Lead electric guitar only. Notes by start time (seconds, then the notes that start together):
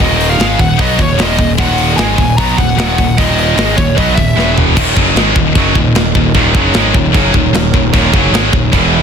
0.01 D#5
0.29 F5
0.61 F#5
0.81 D#5
1.02 C#5
1.22 D#5
1.60 F#5
1.97 G#5
2.37 A#5
2.57 F#5
2.79 F#5
3.18 D#5
3.40 D#5
3.77 C#5
3.98 D#5
4.15 E5